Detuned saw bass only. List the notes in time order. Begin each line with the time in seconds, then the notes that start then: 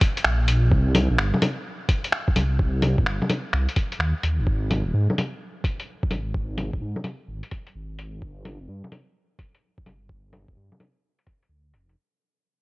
0.25 A#1
0.72 C2
1.11 A#1
1.19 G1
2.36 C2
2.98 A#1
3.06 G1
3.54 C2
3.99 D#2
4.24 D#2
4.39 G1
4.47 G#1
4.86 D#1
4.94 G#2
6.11 G#1
6.74 D#1
6.82 G#2
7.28 G#1
7.75 G#1
8.22 G1
8.61 F1
8.69 G2
9.86 G1
10.49 F1
10.56 G2
11.49 D2
11.73 F1